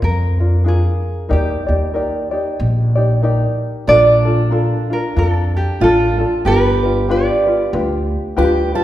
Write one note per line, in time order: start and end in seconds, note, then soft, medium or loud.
0.00 0.86 F2 loud
0.00 0.41 D4 soft
0.00 0.39 F4 soft
0.00 0.38 A#4 medium
0.00 0.69 A#4 medium
0.38 0.64 D4 soft
0.38 0.65 F4 soft
0.38 0.64 A#4 soft
0.64 1.29 D4 medium
0.64 1.28 F4 medium
0.64 1.30 G#4 medium
0.64 1.28 G#4 medium
0.64 1.29 A#4 medium
1.29 1.55 D#2 medium
1.29 1.67 D#4 medium
1.29 1.66 G4 medium
1.29 3.58 G4 medium
1.29 1.67 A#4 medium
1.29 1.65 D5 medium
1.67 2.28 D#2 medium
1.67 1.93 D#4 soft
1.67 1.93 G4 soft
1.67 1.94 D5 soft
1.94 2.32 D#4 medium
1.94 2.31 G4 medium
1.94 2.32 A#4 medium
1.94 2.30 D5 medium
2.31 2.97 D#4 soft
2.31 2.96 G4 soft
2.31 2.95 D5 medium
2.60 3.43 A#1 loud
2.95 3.22 D#4 soft
2.95 3.22 G4 medium
2.95 3.23 D5 medium
3.22 3.87 D#4 medium
3.22 3.87 G4 medium
3.22 3.88 A#4 medium
3.22 3.89 D5 medium
3.87 4.71 A#1 medium
3.87 5.81 D4 medium
3.87 4.26 D4 medium
3.87 4.25 F4 medium
3.87 4.24 A4 medium
3.87 4.26 A#4 medium
3.87 4.49 D5 loud
4.25 4.50 D4 soft
4.25 4.50 F4 soft
4.25 4.51 A4 medium
4.50 4.89 D4 medium
4.50 4.89 F4 medium
4.50 4.90 A4 medium
4.50 4.89 A#4 medium
4.90 5.15 D4 soft
4.90 5.15 F4 soft
4.90 5.19 A#4 medium
5.16 5.58 F2 medium
5.16 5.80 D4 medium
5.16 5.81 F4 medium
5.16 5.81 A4 medium
5.16 5.53 A4 medium
5.57 5.83 G4 medium
5.80 6.22 A1 medium
5.80 6.18 D4 medium
5.80 6.47 F4 medium
5.80 6.18 F4 medium
5.80 6.17 A4 medium
5.80 6.48 A4 medium
6.18 6.44 D4 soft
6.18 6.45 F4 soft
6.18 6.45 A4 medium
6.45 7.28 G1 medium
6.45 6.83 D4 medium
6.45 6.83 F4 medium
6.45 6.83 G4 medium
6.45 8.37 G4 medium
6.45 6.82 B4 medium
6.45 7.06 B4 loud
6.83 7.08 D4 soft
6.83 7.09 F4 soft
6.83 7.09 B4 soft
7.09 7.47 D4 medium
7.09 7.46 F4 medium
7.09 7.46 G4 medium
7.09 7.45 B4 medium
7.09 8.35 D5 medium
7.46 7.73 D4 soft
7.46 7.73 F4 medium
7.46 7.73 B4 soft
7.73 8.15 D2 loud
7.73 8.37 D4 medium
7.73 8.37 F4 medium
7.73 8.36 G4 medium
7.73 8.36 B4 medium
8.37 8.79 D2 medium
8.37 8.75 D4 medium
8.37 8.74 F4 medium
8.37 8.75 G4 medium
8.37 8.73 B4 loud
8.74 8.84 D4 soft
8.74 8.84 F4 medium
8.74 8.84 A4 medium
8.74 8.84 B4 medium